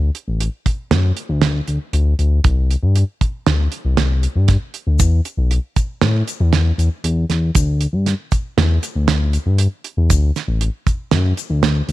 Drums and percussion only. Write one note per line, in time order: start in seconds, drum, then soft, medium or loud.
0.15 closed hi-hat medium
0.40 closed hi-hat medium
0.66 kick medium
0.66 closed hi-hat medium
0.91 snare loud
0.91 closed hi-hat medium
1.17 closed hi-hat medium
1.42 snare loud
1.42 closed hi-hat medium
1.68 closed hi-hat soft
1.93 closed hi-hat medium
2.19 closed hi-hat soft
2.44 kick loud
2.44 closed hi-hat medium
2.71 closed hi-hat medium
2.96 closed hi-hat medium
3.21 kick medium
3.21 closed hi-hat medium
3.47 snare loud
3.47 closed hi-hat medium
3.72 closed hi-hat medium
3.97 snare loud
3.97 closed hi-hat medium
4.23 closed hi-hat medium
4.48 kick medium
4.48 snare soft
4.48 closed hi-hat medium
4.74 closed hi-hat medium
4.99 kick loud
4.99 closed hi-hat medium
4.99 shaker medium
5.25 closed hi-hat medium
5.25 shaker soft
5.51 closed hi-hat medium
5.76 kick medium
5.76 closed hi-hat medium
5.76 shaker soft
6.01 snare loud
6.01 closed hi-hat medium
6.28 closed hi-hat medium
6.28 shaker soft
6.53 snare medium
6.53 closed hi-hat medium
6.79 closed hi-hat medium
6.79 shaker soft
7.04 closed hi-hat medium
7.30 snare soft
7.30 closed hi-hat medium
7.55 kick loud
7.55 closed hi-hat medium
7.55 shaker medium
7.81 closed hi-hat medium
7.81 shaker soft
8.06 snare soft
8.06 closed hi-hat medium
8.32 kick medium
8.32 closed hi-hat medium
8.32 shaker soft
8.58 snare loud
8.58 closed hi-hat medium
8.83 closed hi-hat medium
8.83 shaker soft
9.08 snare loud
9.08 closed hi-hat medium
9.33 closed hi-hat medium
9.33 shaker soft
9.58 closed hi-hat medium
9.84 closed hi-hat medium
10.10 kick medium
10.10 closed hi-hat medium
10.10 shaker medium
10.36 snare soft
10.36 closed hi-hat soft
10.36 shaker soft
10.61 closed hi-hat medium
10.87 kick medium
10.87 closed hi-hat medium
10.87 shaker soft
11.11 snare loud
11.11 closed hi-hat medium
11.37 closed hi-hat medium
11.37 shaker soft
11.63 snare loud
11.63 closed hi-hat medium
11.89 closed hi-hat soft